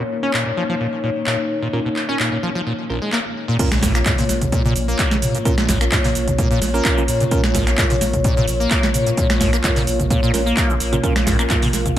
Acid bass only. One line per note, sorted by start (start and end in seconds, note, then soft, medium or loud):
0.23 0.32 C#4 loud
0.34 0.44 A#2 medium
0.46 0.52 A#2 medium
0.57 0.64 F3 medium
0.69 0.75 F3 loud
0.80 0.87 A#2 medium
1.03 1.10 A#2 medium
1.27 1.37 A#2 medium
1.62 1.68 A#2 medium
1.73 1.80 A#2 medium
1.85 1.89 B2 medium
2.09 2.18 C#4 loud
2.20 2.30 A#2 medium
2.32 2.38 A#2 medium
2.43 2.50 F3 loud
2.55 2.61 F3 loud
2.66 2.73 A#2 medium
2.89 3.00 A#1 medium
3.02 3.11 G#3 medium
3.13 3.19 A#3 loud
3.48 3.57 A#2 medium
3.72 3.84 A#1 medium
3.83 3.93 A#2 loud
3.95 3.99 A#3 medium
4.06 4.13 G#2 medium
4.18 4.24 A#2 medium
4.53 4.63 A#2 medium
4.65 4.74 A#2 loud
4.88 5.13 A#3 medium
5.11 5.17 A#2 loud
5.35 5.38 A#2 medium
5.45 5.56 A#2 medium
5.58 5.70 A#1 medium
5.69 5.79 A#2 loud
5.81 5.85 A#3 medium
5.92 5.99 G#2 medium
6.04 6.10 A#2 medium
6.38 6.49 A#2 medium
6.51 6.60 A#2 loud
6.74 6.99 A#3 medium
6.97 7.03 A#2 loud
7.21 7.24 A#2 medium
7.31 7.42 A#2 medium
7.44 7.56 A#1 medium
7.55 7.65 A#2 loud
7.67 7.71 A#3 medium
7.78 7.85 G#2 medium
7.90 7.96 A#2 medium
8.24 8.35 A#2 medium
8.37 8.46 A#2 loud
8.60 8.85 A#3 medium
8.83 8.89 A#2 loud
9.07 9.10 A#2 medium
9.18 9.28 A#2 medium
9.30 9.42 A#1 medium
9.41 9.51 A#2 loud
9.53 9.57 A#3 medium
9.64 9.71 G#2 medium
9.76 9.82 A#2 medium
10.10 10.21 A#2 medium
10.23 10.32 A#2 loud
10.46 10.71 A#3 medium
10.69 10.75 A#2 loud
10.93 10.96 A#2 medium
11.04 11.14 A#2 medium
11.16 11.28 A#1 medium
11.27 11.37 A#2 loud
11.39 11.43 A#3 medium
11.50 11.57 G#2 medium
11.63 11.68 A#2 medium